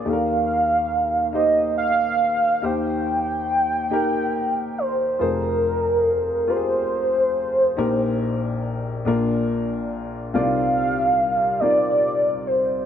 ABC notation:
X:1
M:6/8
L:1/8
Q:3/8=47
K:Eb
V:1 name="Soft synth lead"
f3 e f2 | g4- g c | B3 c3- | c4 z2 |
f3 d2 c |]
V:2 name="Upright piano"
[EG=AB]3 [EGc]3 | [EGc]3 [EGB]3 | [FAc]3 [FGAB]3 | [EGB]3 [DFB]3 |
[CDEFBd]3 [CEFBd]3 |]
V:3 name="Upright piano" clef=bass
[E,,E,]6 | [E,,E,]6 | [F,,,F,,]6 | [B,,,B,,]3 [B,,,B,,]3 |
[C,,C,]6 |]